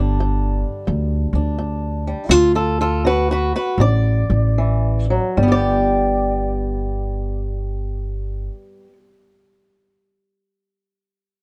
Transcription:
Already playing: upright bass G1, steel-string acoustic guitar G2 D3 G3
0.00 steel-string acoustic guitar D4
0.20 steel-string acoustic guitar G2
0.87 upright bass D2, steel-string acoustic guitar G2
1.33 upright bass D2, steel-string acoustic guitar D4
1.58 steel-string acoustic guitar G2
2.07 steel-string acoustic guitar G3
2.29 upright bass D2, steel-string acoustic guitar D3 F4 A4
2.55 steel-string acoustic guitar F4 A4
2.81 steel-string acoustic guitar F4 A4
3.05 steel-string acoustic guitar D3 F#4 B4
3.31 steel-string acoustic guitar F#4 B4
3.56 steel-string acoustic guitar F#4 B4
3.78 upright bass A1, steel-string acoustic guitar D3 D5
4.30 upright bass A1
4.58 steel-string acoustic guitar E3
5.10 steel-string acoustic guitar F#3
5.37 upright bass G1, steel-string acoustic guitar G3
5.43 steel-string acoustic guitar B3
5.48 steel-string acoustic guitar G4 D5

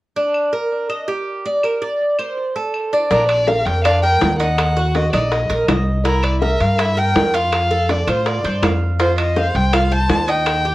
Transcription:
0.16 cuban tres D4
0.34 claves
0.53 cuban tres A#4
0.90 cuban tres D#5, claves
1.08 cuban tres G4
1.46 cuban tres D5
1.63 cuban tres A#4, claves
1.82 cuban tres D5
2.19 cuban tres C5, claves
2.56 cuban tres A4
2.74 claves
2.93 cuban tres D4
3.11 upright bass A#1, cuban tres D4, violin A#4, high bongo, high timbale
3.29 violin D5, high timbale, claves
3.47 cuban tres A#4, violin F5, high bongo, low timbale
3.66 upright bass F2, violin G5, high timbale
3.84 cuban tres D4, violin F5, high bongo, high timbale, claves
4.02 cuban tres A#4, violin G5
4.21 upright bass D#2, high bongo, low bongo, high timbale, low timbale
4.39 cuban tres D#4, violin F#5, high timbale
4.58 high bongo, high timbale, claves
4.76 cuban tres F#4, high bongo
4.95 violin D#5, high bongo, high timbale, low timbale
5.13 upright bass A#1, cuban tres D#4, violin D5, high bongo, high timbale, claves
5.32 violin D#5, high bongo, high timbale
5.50 upright bass A#1, cuban tres A#4, high bongo, high timbale
5.68 upright bass C2, cuban tres D#5, high bongo, low bongo, high timbale, low timbale, claves
6.05 cuban tres E4, violin A#4, high bongo, high timbale
6.23 violin D5, high timbale, claves
6.42 cuban tres A#4, violin E5, high bongo, low timbale
6.60 upright bass G2, violin F5, high timbale
6.79 cuban tres E4, violin E5, high bongo, high timbale, claves
6.97 cuban tres A#4, violin G5
7.15 upright bass F2, high bongo, low bongo, high timbale, low timbale
7.34 cuban tres F4, violin F5, high timbale
7.52 high bongo, high timbale, claves
7.71 cuban tres A4, high bongo
7.89 violin D5, high bongo, high timbale, low timbale
8.07 upright bass A2, cuban tres F4, violin C5, high bongo, high timbale, claves
8.26 violin D5, high bongo, high timbale
8.44 upright bass G2, cuban tres C5, high bongo, high timbale
8.63 upright bass F2, cuban tres F5, high bongo, low bongo, high timbale, low timbale, claves
9.00 cuban tres F4, violin C5, high bongo, high timbale
9.18 violin D#5, high timbale, claves
9.36 cuban tres C5, violin F5, high bongo, low timbale
9.55 upright bass C2, violin G5, high timbale
9.73 cuban tres F4, violin F5, high bongo, high timbale, claves
9.92 cuban tres C5, violin A5
10.09 upright bass D#2, high bongo, low bongo, high timbale, low timbale
10.28 cuban tres D#4, violin G5, high timbale
10.46 high bongo, high timbale, claves
10.65 cuban tres G4, high bongo

